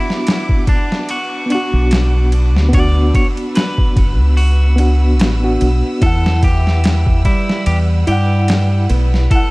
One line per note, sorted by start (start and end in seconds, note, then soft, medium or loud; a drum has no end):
0.00 1.43 B3 medium
0.00 1.45 D4 medium
0.00 5.98 D4 medium
0.00 0.64 E4 loud
0.00 1.48 F#4 loud
0.00 9.51 B4 medium
0.00 5.98 F#5 medium
0.00 2.69 D6 medium
0.10 snare soft
0.27 snare loud
0.27 ride medium
0.49 kick medium
0.67 1.10 D4 loud
0.67 kick medium
0.67 ride medium
0.92 snare soft
1.09 1.51 F#4 loud
1.09 ride medium
1.46 2.67 B3 medium
1.50 2.69 D4 medium
1.50 2.29 F#4 loud
1.50 ride medium
1.55 2.71 F#4 medium
1.73 2.55 B1 loud
1.91 snare loud
1.91 ride medium
2.32 ride medium
2.55 3.11 D2 medium
2.55 snare soft
2.69 4.72 B3 medium
2.73 4.74 D4 medium
2.73 3.15 D5 loud
2.73 9.27 E6 medium
2.73 kick loud
2.73 ride medium
2.77 4.76 F#4 medium
3.14 3.26 C#5 loud
3.14 kick medium
3.14 ride medium
3.37 ride soft
3.55 4.34 B4 medium
3.55 snare loud
3.55 ride medium
3.78 kick medium
3.96 4.20 F#1 medium
3.96 kick medium
3.96 ride medium
4.20 5.20 C#2 medium
4.37 5.56 F#4 medium
4.37 open hi-hat medium
4.76 5.36 B3 medium
4.76 5.37 D4 medium
4.76 ride medium
4.80 5.38 F#4 medium
5.19 5.56 A1 medium
5.19 snare loud
5.19 ride medium
5.40 5.96 B3 medium
5.40 5.97 D4 medium
5.44 5.98 F#4 loud
5.61 5.81 B1 medium
5.61 ride medium
6.01 7.21 E2 medium
6.01 8.03 E4 medium
6.01 6.44 A4 loud
6.01 9.51 F#5 medium
6.01 kick loud
6.01 ride medium
6.06 8.05 F#5 loud
6.26 snare medium
6.43 7.21 E3 medium
6.43 7.25 G4 loud
6.43 kick medium
6.43 ride medium
6.67 snare soft
6.84 snare loud
6.84 ride medium
7.06 kick medium
7.25 8.04 G3 loud
7.25 7.66 E4 medium
7.25 kick medium
7.25 ride medium
7.49 snare soft
7.66 8.03 E2 medium
7.66 7.77 G4 loud
7.66 ride medium
8.07 8.86 G2 medium
8.07 8.86 G3 loud
8.07 9.26 E4 medium
8.07 8.86 G4 medium
8.07 ride medium
8.12 9.28 F#5 medium
8.48 snare loud
8.48 ride medium
8.89 9.26 B1 loud
8.89 9.29 B3 loud
8.89 ride medium
9.14 snare soft
9.30 9.51 E4 medium
9.30 9.51 A4 loud
9.30 9.51 F#6 medium
9.30 kick loud
9.30 ride medium
9.35 9.51 F#5 loud